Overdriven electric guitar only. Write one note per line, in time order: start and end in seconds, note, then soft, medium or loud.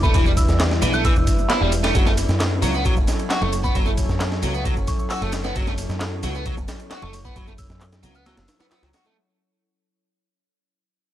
0.03 0.13 A3 loud
0.14 0.25 E3 medium
0.26 0.31 G3 medium
0.82 0.92 E3 loud
0.93 1.03 A3 loud
1.04 1.13 E3 medium
1.49 1.60 E4 medium
1.61 1.72 G3 medium
1.83 1.93 A3 loud
1.95 2.05 F#3 medium
2.06 2.11 A3 medium
2.62 2.72 F#3 loud
2.74 2.84 B3 loud
2.85 2.94 F#3 medium
3.30 3.41 F#4 medium
3.42 3.52 A3 medium
3.64 3.74 B3 loud
3.75 3.85 F#3 medium
3.86 3.92 A3 medium
4.43 4.53 F#3 loud
4.54 4.64 B3 loud
4.65 4.74 F#3 medium
5.10 5.21 F#4 medium
5.22 5.32 A3 medium
5.44 5.54 B3 loud
5.55 5.66 F#3 medium
5.67 5.72 A3 medium
6.23 6.34 F#3 loud
6.35 6.45 B3 loud
6.46 6.55 F#3 medium
6.91 7.02 F#4 medium
7.02 7.13 A3 medium
7.25 7.35 B3 loud
7.36 7.46 F#3 medium
7.47 7.53 A3 medium
8.03 8.14 F#3 loud
8.15 8.25 B3 loud
8.26 8.35 F#3 medium
8.60 8.65 B3 loud
8.71 8.81 B3 medium
8.83 8.88 F#3 loud
8.94 9.05 F#4 medium
9.05 9.16 A3 medium